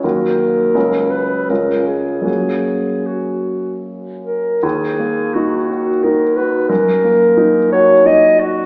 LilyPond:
<<
  \new Staff \with { instrumentName = "Clarinet" } { \time 3/4 \key fis \major \tempo 4 = 84 ais'4. b'8 ais'8 gis'8 | gis'4 fis'4 r8 ais'8 | \key ees \minor aes'4 ges'4 bes'8 ces''8 | bes'4. des''8 ees''8 ges'8 | }
  \new Staff \with { instrumentName = "Grand piano" } { \time 3/4 \key fis \major <dis, fis ais fis'>4 <cis, fis cis' fis'>4 <cis, gis cis' eis'>4 | <fis, ais cis' fis'>2. | \key ees \minor ees,8 bes8 ees'8 ges'8 ees'8 ges'8 | ges,8 bes8 ees'8 ges'8 ees'8 ges'8 | }
>>